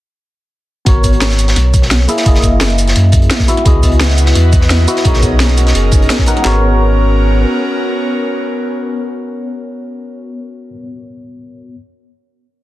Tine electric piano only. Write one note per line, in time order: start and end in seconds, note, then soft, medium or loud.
0.85 2.06 B3 medium
0.85 2.07 F#4 medium
0.85 2.07 A#4 medium
0.85 2.08 C#5 medium
2.08 2.23 A#3 medium
2.08 2.24 E4 medium
2.08 2.24 G#4 medium
2.08 2.25 E5 medium
2.24 3.45 A#3 medium
2.24 3.46 E4 medium
2.24 3.47 G#4 medium
2.24 3.47 D#5 medium
3.47 3.63 B3 medium
3.47 3.64 E4 medium
3.47 3.64 F#4 medium
3.47 3.64 E5 medium
3.64 4.85 B3 medium
3.64 4.86 E4 medium
3.64 4.86 F#4 medium
3.64 4.87 D#5 medium
4.87 5.02 B3 medium
4.87 5.03 E4 medium
4.87 5.03 F#4 medium
4.87 5.04 E5 medium
5.04 6.24 B3 medium
5.04 6.25 D#4 medium
5.04 6.26 A#4 medium
5.04 6.26 C#5 medium
6.27 6.41 B3 medium
6.27 6.43 D#4 medium
6.27 6.43 A#4 medium
6.27 6.43 F#5 medium
6.42 10.69 B3 medium
6.42 10.69 F#4 medium
6.42 10.70 A#4 medium
6.47 10.71 C#5 medium